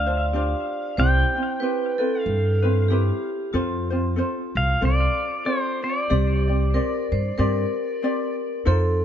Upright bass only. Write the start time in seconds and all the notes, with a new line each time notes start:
Already playing: D2
0.98 C2
2.26 G2
3.54 F2
4.55 C2
4.82 C2
6.11 C2
7.12 G2
7.39 G2
8.67 F2